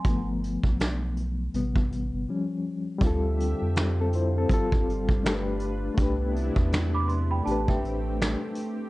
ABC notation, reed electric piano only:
X:1
M:4/4
L:1/16
Q:"Swing 16ths" 1/4=81
K:Ddor
V:1 name="Reed electric piano"
z16 | [G,CFA]8 [G,CFA]4 [A,DGAB]4 | [A,DGB]8 [A,DGB]8 |]
V:2 name="Reed electric piano"
[F,A,B,]2 z6 [C,G,B,]4 [F,G,^C]4 | z4 z [CA] [Ec] [CA]2 z6 z | z16 |]